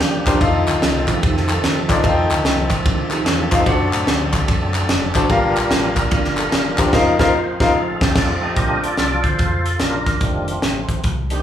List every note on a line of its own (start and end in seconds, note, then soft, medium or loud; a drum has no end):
0.00 0.22 D#2 loud
0.00 0.38 F3 medium
0.00 0.37 G3 medium
0.00 0.38 A#3 medium
0.00 0.37 D4 medium
0.00 0.39 D4 medium
0.00 0.38 F4 medium
0.00 0.37 G4 medium
0.00 snare loud
0.00 ride bell medium
0.26 0.39 E2 medium
0.26 0.37 D4 medium
0.26 0.37 F4 medium
0.26 0.37 G4 medium
0.26 0.37 A#4 medium
0.26 0.37 C5 medium
0.26 kick medium
0.26 snare soft
0.26 clap loud
0.26 ride bell medium
0.40 0.63 F2 loud
0.40 3.62 D#3 medium
0.40 3.62 F3 medium
0.40 3.62 A3 medium
0.40 3.62 C4 medium
0.40 1.05 D#4 medium
0.40 1.05 F4 medium
0.40 3.62 A4 medium
0.40 1.05 A4 medium
0.40 1.05 C5 medium
0.40 1.05 F5 medium
0.40 kick loud
0.40 ride bell medium
0.68 0.80 D2 medium
0.68 clap medium
0.68 ride bell medium
0.82 1.17 C2 medium
0.82 snare loud
0.82 ride bell medium
1.08 1.22 D4 medium
1.08 1.22 F4 medium
1.08 kick medium
1.08 clap medium
1.08 ride bell medium
1.22 1.57 F2 medium
1.22 1.48 D#4 medium
1.22 1.47 G4 medium
1.22 kick loud
1.22 ride bell medium
1.37 snare soft
1.49 2.02 F4 medium
1.49 2.01 A4 medium
1.49 clap medium
1.49 ride bell medium
1.63 2.04 D#2 medium
1.63 snare loud
1.63 ride bell medium
1.89 2.00 D#4 medium
1.89 2.00 F4 medium
1.89 2.00 A4 medium
1.89 2.00 C5 medium
1.89 2.00 D5 medium
1.89 kick medium
1.89 snare soft
1.89 clap loud
1.89 ride bell medium
2.04 2.26 F2 medium
2.04 2.67 D#4 medium
2.04 2.67 F4 medium
2.04 2.67 A4 medium
2.04 2.67 C5 medium
2.04 2.10 F5 medium
2.04 kick loud
2.04 ride bell medium
2.09 2.70 G5 medium
2.30 2.42 D2 medium
2.30 clap loud
2.30 ride bell medium
2.45 2.86 C2 medium
2.45 snare loud
2.45 ride bell medium
2.70 kick medium
2.70 clap medium
2.70 ride bell medium
2.85 3.20 D#2 loud
2.85 3.11 D4 medium
2.85 3.10 F4 medium
2.85 kick loud
2.85 ride bell medium
3.11 3.25 D#4 medium
3.11 3.25 G4 medium
3.11 clap medium
3.11 ride bell medium
3.25 3.48 E2 medium
3.25 3.65 D4 medium
3.25 3.64 F4 medium
3.25 snare loud
3.25 ride bell medium
3.51 3.64 F2 medium
3.51 3.62 D#4 medium
3.51 3.62 F4 medium
3.51 3.63 A4 medium
3.51 3.62 C5 medium
3.51 3.62 F5 medium
3.51 kick medium
3.51 snare soft
3.51 clap loud
3.51 ride bell medium
3.65 3.89 F#2 loud
3.65 5.26 F#3 medium
3.65 5.26 A3 medium
3.65 5.26 C4 medium
3.65 5.26 D4 medium
3.65 4.30 D4 medium
3.65 4.30 F#4 medium
3.65 5.26 A4 medium
3.65 4.30 A4 medium
3.65 4.31 C5 medium
3.65 4.31 F#5 medium
3.65 kick loud
3.65 ride bell medium
3.93 4.05 A2 medium
3.93 clap loud
3.93 ride bell medium
4.07 4.42 D2 loud
4.07 snare loud
4.07 ride bell medium
4.33 kick medium
4.33 clap medium
4.33 ride bell medium
4.48 4.83 F#2 medium
4.48 kick loud
4.48 ride bell medium
4.74 clap medium
4.74 ride bell medium
4.89 5.12 F1 loud
4.89 snare loud
4.89 ride bell medium
5.15 5.28 F#1 medium
5.15 5.26 D4 medium
5.15 5.26 F#4 medium
5.15 5.26 A4 medium
5.15 5.26 C5 medium
5.15 5.26 A5 medium
5.15 kick medium
5.15 clap loud
5.15 ride bell medium
5.29 5.52 G1 loud
5.29 5.93 G2 medium
5.29 6.90 G3 medium
5.29 6.90 A#3 medium
5.29 6.90 D4 medium
5.29 5.94 D4 medium
5.29 6.89 F4 medium
5.29 5.94 F4 medium
5.29 5.94 G4 medium
5.29 6.90 A#4 medium
5.29 5.94 A#4 medium
5.29 5.94 F5 loud
5.29 kick loud
5.29 ride bell medium
5.56 5.68 A#1 loud
5.56 clap medium
5.56 ride bell medium
5.71 6.05 A1 loud
5.71 snare loud
5.71 ride bell medium
5.96 kick medium
5.96 clap medium
5.96 ride bell medium
6.11 6.46 G1 medium
6.11 6.37 D4 medium
6.11 6.37 F4 medium
6.11 kick loud
6.11 ride bell medium
6.24 snare soft
6.37 6.52 F4 medium
6.37 6.52 A4 medium
6.37 clap medium
6.37 ride bell medium
6.52 6.74 D#1 loud
6.52 6.91 G4 medium
6.52 snare loud
6.52 ride bell medium
6.78 6.91 E1 loud
6.78 6.89 D4 medium
6.78 6.89 F4 medium
6.78 6.89 G4 medium
6.78 6.89 A#4 medium
6.78 6.89 C5 medium
6.78 kick medium
6.78 snare soft
6.78 clap loud
6.78 ride bell medium
6.92 7.11 F1 loud
6.92 7.73 F3 medium
6.92 7.73 A#3 medium
6.92 7.73 C4 medium
6.92 7.33 D#4 medium
6.92 7.11 D#4 loud
6.92 7.11 F4 medium
6.92 7.33 A#4 medium
6.92 7.11 A#4 loud
6.92 7.11 C5 loud
6.92 7.11 F5 loud
6.92 kick loud
6.92 snare loud
6.92 crash medium
7.19 7.29 F1 loud
7.19 7.30 D#4 loud
7.19 7.30 F4 loud
7.19 7.30 A#4 loud
7.19 7.30 C5 loud
7.19 7.30 F5 loud
7.19 kick loud
7.19 snare loud
7.34 7.59 D#4 medium
7.34 7.59 C5 medium
7.60 7.70 F1 loud
7.60 7.70 D#4 loud
7.60 7.71 F4 loud
7.60 7.79 A4 medium
7.60 7.70 A#4 medium
7.60 7.71 C5 loud
7.60 7.70 F5 loud
7.60 8.00 F5 medium
7.60 kick loud
7.60 snare loud
7.75 8.56 F3 medium
7.75 8.56 A3 medium
7.75 8.16 C4 medium
7.75 8.16 D#4 medium
7.75 7.81 G#4 medium
7.81 8.15 A4 medium
8.01 8.11 F1 loud
8.01 8.17 G4 medium
8.01 kick loud
8.01 snare loud
8.15 8.34 F1 loud
8.15 8.55 C4 medium
8.15 8.55 D#4 medium
8.15 8.42 F4 medium
8.15 8.54 A4 medium
8.15 8.41 D5 medium
8.15 kick loud
8.15 snare loud
8.15 crash medium
8.43 8.82 G4 medium
8.43 8.82 D#5 medium
8.56 8.92 A#1 medium
8.56 8.88 A3 medium
8.56 8.88 C4 soft
8.56 8.88 D4 medium
8.56 8.83 F4 medium
8.56 8.81 A#4 loud
8.56 kick loud
8.56 closed hi-hat medium
8.83 9.25 F4 medium
8.83 9.24 A4 medium
8.83 9.26 D5 loud
8.83 closed hi-hat medium
8.97 9.20 C2 medium
8.97 snare loud
8.97 closed hi-hat medium
9.23 9.36 D2 medium
9.23 9.81 F4 medium
9.23 9.74 A4 medium
9.23 9.62 C5 loud
9.23 kick medium
9.23 closed hi-hat medium
9.39 9.74 F2 medium
9.39 kick loud
9.39 closed hi-hat medium
9.66 closed hi-hat medium
9.76 9.80 A4 medium
9.76 snare loud
9.76 closed hi-hat medium
9.80 10.15 A#1 medium
9.80 10.19 D4 medium
9.80 10.19 F4 medium
9.80 10.23 A#4 medium
10.06 kick medium
10.06 snare soft
10.06 closed hi-hat medium
10.21 10.56 F1 loud
10.21 10.53 D#3 soft
10.21 10.53 G3 soft
10.21 11.01 A3 medium
10.21 11.01 C4 soft
10.21 10.53 D4 medium
10.21 10.60 F4 medium
10.21 kick loud
10.21 closed hi-hat medium
10.48 closed hi-hat medium
10.62 10.85 A1 medium
10.62 snare loud
10.62 closed hi-hat medium
10.89 11.01 A1 loud
10.89 kick medium
10.89 closed hi-hat medium
11.04 11.39 C2 medium
11.04 kick loud
11.04 closed hi-hat medium
11.30 11.43 D#3 soft
11.30 11.43 G3 soft
11.30 11.43 A3 soft
11.30 11.43 C4 medium
11.30 11.43 D4 medium
11.30 11.43 D#4 medium
11.30 11.43 G4 loud
11.30 closed hi-hat medium